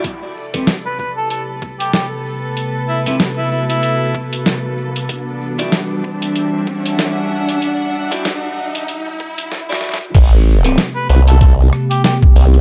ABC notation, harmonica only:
X:1
M:4/4
L:1/16
Q:"Swing 16ths" 1/4=95
K:Ador
V:1 name="Harmonica"
z4 z B B A A z2 G G z3 | z2 E E z E E E3 z6 | z16 | z16 |
z4 z B B A A z2 G G z3 |]